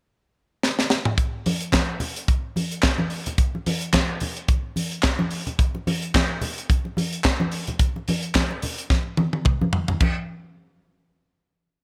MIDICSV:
0, 0, Header, 1, 2, 480
1, 0, Start_track
1, 0, Tempo, 551978
1, 1024, Time_signature, 4, 2, 24, 8
1, 10293, End_track
2, 0, Start_track
2, 0, Title_t, "Drums"
2, 551, Note_on_c, 9, 38, 63
2, 638, Note_off_c, 9, 38, 0
2, 684, Note_on_c, 9, 38, 63
2, 771, Note_off_c, 9, 38, 0
2, 784, Note_on_c, 9, 38, 82
2, 871, Note_off_c, 9, 38, 0
2, 916, Note_on_c, 9, 45, 81
2, 1003, Note_off_c, 9, 45, 0
2, 1023, Note_on_c, 9, 42, 57
2, 1024, Note_on_c, 9, 36, 101
2, 1110, Note_off_c, 9, 42, 0
2, 1111, Note_off_c, 9, 36, 0
2, 1268, Note_on_c, 9, 46, 75
2, 1272, Note_on_c, 9, 63, 75
2, 1355, Note_off_c, 9, 46, 0
2, 1359, Note_off_c, 9, 63, 0
2, 1396, Note_on_c, 9, 42, 46
2, 1482, Note_off_c, 9, 42, 0
2, 1499, Note_on_c, 9, 62, 35
2, 1499, Note_on_c, 9, 63, 78
2, 1505, Note_on_c, 9, 39, 71
2, 1505, Note_on_c, 9, 42, 58
2, 1506, Note_on_c, 9, 36, 81
2, 1511, Note_on_c, 9, 38, 94
2, 1586, Note_off_c, 9, 62, 0
2, 1586, Note_off_c, 9, 63, 0
2, 1592, Note_off_c, 9, 39, 0
2, 1592, Note_off_c, 9, 42, 0
2, 1593, Note_off_c, 9, 36, 0
2, 1598, Note_off_c, 9, 38, 0
2, 1739, Note_on_c, 9, 64, 74
2, 1740, Note_on_c, 9, 46, 64
2, 1826, Note_off_c, 9, 64, 0
2, 1827, Note_off_c, 9, 46, 0
2, 1881, Note_on_c, 9, 42, 47
2, 1968, Note_off_c, 9, 42, 0
2, 1985, Note_on_c, 9, 36, 92
2, 1986, Note_on_c, 9, 42, 57
2, 2072, Note_off_c, 9, 36, 0
2, 2073, Note_off_c, 9, 42, 0
2, 2226, Note_on_c, 9, 63, 60
2, 2232, Note_on_c, 9, 46, 57
2, 2313, Note_off_c, 9, 63, 0
2, 2319, Note_off_c, 9, 46, 0
2, 2360, Note_on_c, 9, 42, 40
2, 2447, Note_off_c, 9, 42, 0
2, 2457, Note_on_c, 9, 39, 74
2, 2463, Note_on_c, 9, 38, 93
2, 2465, Note_on_c, 9, 36, 100
2, 2465, Note_on_c, 9, 42, 54
2, 2471, Note_on_c, 9, 62, 35
2, 2544, Note_off_c, 9, 39, 0
2, 2550, Note_off_c, 9, 38, 0
2, 2552, Note_off_c, 9, 36, 0
2, 2552, Note_off_c, 9, 42, 0
2, 2558, Note_off_c, 9, 62, 0
2, 2595, Note_on_c, 9, 63, 70
2, 2682, Note_off_c, 9, 63, 0
2, 2695, Note_on_c, 9, 46, 52
2, 2782, Note_off_c, 9, 46, 0
2, 2836, Note_on_c, 9, 42, 44
2, 2842, Note_on_c, 9, 64, 62
2, 2923, Note_off_c, 9, 42, 0
2, 2929, Note_off_c, 9, 64, 0
2, 2940, Note_on_c, 9, 42, 64
2, 2941, Note_on_c, 9, 36, 96
2, 3027, Note_off_c, 9, 42, 0
2, 3028, Note_off_c, 9, 36, 0
2, 3086, Note_on_c, 9, 62, 37
2, 3173, Note_off_c, 9, 62, 0
2, 3186, Note_on_c, 9, 46, 79
2, 3189, Note_on_c, 9, 63, 76
2, 3273, Note_off_c, 9, 46, 0
2, 3276, Note_off_c, 9, 63, 0
2, 3313, Note_on_c, 9, 42, 48
2, 3400, Note_off_c, 9, 42, 0
2, 3419, Note_on_c, 9, 62, 36
2, 3419, Note_on_c, 9, 63, 78
2, 3422, Note_on_c, 9, 39, 74
2, 3423, Note_on_c, 9, 42, 61
2, 3424, Note_on_c, 9, 36, 95
2, 3428, Note_on_c, 9, 38, 101
2, 3506, Note_off_c, 9, 62, 0
2, 3506, Note_off_c, 9, 63, 0
2, 3509, Note_off_c, 9, 39, 0
2, 3510, Note_off_c, 9, 42, 0
2, 3511, Note_off_c, 9, 36, 0
2, 3515, Note_off_c, 9, 38, 0
2, 3655, Note_on_c, 9, 46, 61
2, 3664, Note_on_c, 9, 64, 79
2, 3742, Note_off_c, 9, 46, 0
2, 3751, Note_off_c, 9, 64, 0
2, 3796, Note_on_c, 9, 42, 46
2, 3883, Note_off_c, 9, 42, 0
2, 3899, Note_on_c, 9, 42, 60
2, 3901, Note_on_c, 9, 36, 97
2, 3986, Note_off_c, 9, 42, 0
2, 3988, Note_off_c, 9, 36, 0
2, 4139, Note_on_c, 9, 63, 58
2, 4145, Note_on_c, 9, 46, 64
2, 4226, Note_off_c, 9, 63, 0
2, 4232, Note_off_c, 9, 46, 0
2, 4274, Note_on_c, 9, 42, 40
2, 4361, Note_off_c, 9, 42, 0
2, 4372, Note_on_c, 9, 39, 70
2, 4377, Note_on_c, 9, 38, 86
2, 4379, Note_on_c, 9, 42, 57
2, 4382, Note_on_c, 9, 36, 99
2, 4459, Note_off_c, 9, 39, 0
2, 4464, Note_off_c, 9, 38, 0
2, 4466, Note_off_c, 9, 42, 0
2, 4469, Note_off_c, 9, 36, 0
2, 4513, Note_on_c, 9, 62, 35
2, 4513, Note_on_c, 9, 63, 75
2, 4600, Note_off_c, 9, 62, 0
2, 4600, Note_off_c, 9, 63, 0
2, 4613, Note_on_c, 9, 46, 58
2, 4700, Note_off_c, 9, 46, 0
2, 4754, Note_on_c, 9, 64, 65
2, 4755, Note_on_c, 9, 42, 43
2, 4841, Note_off_c, 9, 64, 0
2, 4842, Note_off_c, 9, 42, 0
2, 4860, Note_on_c, 9, 36, 99
2, 4863, Note_on_c, 9, 42, 53
2, 4947, Note_off_c, 9, 36, 0
2, 4950, Note_off_c, 9, 42, 0
2, 4997, Note_on_c, 9, 62, 36
2, 5084, Note_off_c, 9, 62, 0
2, 5105, Note_on_c, 9, 63, 75
2, 5107, Note_on_c, 9, 46, 81
2, 5192, Note_off_c, 9, 63, 0
2, 5194, Note_off_c, 9, 46, 0
2, 5237, Note_on_c, 9, 42, 44
2, 5324, Note_off_c, 9, 42, 0
2, 5342, Note_on_c, 9, 63, 73
2, 5345, Note_on_c, 9, 36, 102
2, 5349, Note_on_c, 9, 39, 74
2, 5349, Note_on_c, 9, 42, 58
2, 5354, Note_on_c, 9, 38, 96
2, 5429, Note_off_c, 9, 63, 0
2, 5432, Note_off_c, 9, 36, 0
2, 5436, Note_off_c, 9, 39, 0
2, 5436, Note_off_c, 9, 42, 0
2, 5441, Note_off_c, 9, 38, 0
2, 5578, Note_on_c, 9, 64, 73
2, 5579, Note_on_c, 9, 46, 67
2, 5665, Note_off_c, 9, 64, 0
2, 5666, Note_off_c, 9, 46, 0
2, 5721, Note_on_c, 9, 42, 47
2, 5808, Note_off_c, 9, 42, 0
2, 5823, Note_on_c, 9, 36, 95
2, 5823, Note_on_c, 9, 62, 29
2, 5829, Note_on_c, 9, 42, 53
2, 5910, Note_off_c, 9, 36, 0
2, 5910, Note_off_c, 9, 62, 0
2, 5916, Note_off_c, 9, 42, 0
2, 5957, Note_on_c, 9, 62, 35
2, 6044, Note_off_c, 9, 62, 0
2, 6060, Note_on_c, 9, 63, 69
2, 6069, Note_on_c, 9, 46, 65
2, 6147, Note_off_c, 9, 63, 0
2, 6156, Note_off_c, 9, 46, 0
2, 6196, Note_on_c, 9, 42, 44
2, 6283, Note_off_c, 9, 42, 0
2, 6298, Note_on_c, 9, 39, 80
2, 6302, Note_on_c, 9, 62, 35
2, 6303, Note_on_c, 9, 36, 91
2, 6303, Note_on_c, 9, 38, 94
2, 6305, Note_on_c, 9, 42, 58
2, 6385, Note_off_c, 9, 39, 0
2, 6389, Note_off_c, 9, 62, 0
2, 6390, Note_off_c, 9, 36, 0
2, 6390, Note_off_c, 9, 38, 0
2, 6392, Note_off_c, 9, 42, 0
2, 6435, Note_on_c, 9, 62, 36
2, 6435, Note_on_c, 9, 63, 72
2, 6522, Note_off_c, 9, 62, 0
2, 6522, Note_off_c, 9, 63, 0
2, 6535, Note_on_c, 9, 46, 59
2, 6622, Note_off_c, 9, 46, 0
2, 6673, Note_on_c, 9, 42, 46
2, 6679, Note_on_c, 9, 64, 69
2, 6760, Note_off_c, 9, 42, 0
2, 6766, Note_off_c, 9, 64, 0
2, 6777, Note_on_c, 9, 42, 60
2, 6779, Note_on_c, 9, 36, 93
2, 6864, Note_off_c, 9, 42, 0
2, 6865, Note_off_c, 9, 36, 0
2, 6923, Note_on_c, 9, 62, 34
2, 7010, Note_off_c, 9, 62, 0
2, 7023, Note_on_c, 9, 46, 77
2, 7031, Note_on_c, 9, 63, 75
2, 7110, Note_off_c, 9, 46, 0
2, 7118, Note_off_c, 9, 63, 0
2, 7154, Note_on_c, 9, 42, 43
2, 7241, Note_off_c, 9, 42, 0
2, 7260, Note_on_c, 9, 39, 76
2, 7260, Note_on_c, 9, 42, 59
2, 7261, Note_on_c, 9, 63, 77
2, 7263, Note_on_c, 9, 36, 89
2, 7265, Note_on_c, 9, 38, 91
2, 7347, Note_off_c, 9, 39, 0
2, 7347, Note_off_c, 9, 42, 0
2, 7348, Note_off_c, 9, 63, 0
2, 7350, Note_off_c, 9, 36, 0
2, 7352, Note_off_c, 9, 38, 0
2, 7397, Note_on_c, 9, 62, 36
2, 7484, Note_off_c, 9, 62, 0
2, 7498, Note_on_c, 9, 46, 67
2, 7507, Note_on_c, 9, 64, 72
2, 7585, Note_off_c, 9, 46, 0
2, 7594, Note_off_c, 9, 64, 0
2, 7638, Note_on_c, 9, 42, 50
2, 7725, Note_off_c, 9, 42, 0
2, 7741, Note_on_c, 9, 36, 91
2, 7742, Note_on_c, 9, 38, 46
2, 7744, Note_on_c, 9, 63, 44
2, 7828, Note_off_c, 9, 36, 0
2, 7829, Note_off_c, 9, 38, 0
2, 7831, Note_off_c, 9, 63, 0
2, 7978, Note_on_c, 9, 48, 68
2, 7988, Note_on_c, 9, 63, 59
2, 8064, Note_off_c, 9, 48, 0
2, 8075, Note_off_c, 9, 63, 0
2, 8114, Note_on_c, 9, 48, 59
2, 8201, Note_off_c, 9, 48, 0
2, 8218, Note_on_c, 9, 47, 65
2, 8224, Note_on_c, 9, 36, 98
2, 8305, Note_off_c, 9, 47, 0
2, 8311, Note_off_c, 9, 36, 0
2, 8361, Note_on_c, 9, 63, 84
2, 8448, Note_off_c, 9, 63, 0
2, 8459, Note_on_c, 9, 43, 87
2, 8546, Note_off_c, 9, 43, 0
2, 8594, Note_on_c, 9, 43, 80
2, 8606, Note_on_c, 9, 64, 73
2, 8681, Note_off_c, 9, 43, 0
2, 8693, Note_off_c, 9, 64, 0
2, 8699, Note_on_c, 9, 49, 82
2, 8702, Note_on_c, 9, 36, 90
2, 8714, Note_on_c, 9, 63, 74
2, 8786, Note_off_c, 9, 49, 0
2, 8789, Note_off_c, 9, 36, 0
2, 8801, Note_off_c, 9, 63, 0
2, 10293, End_track
0, 0, End_of_file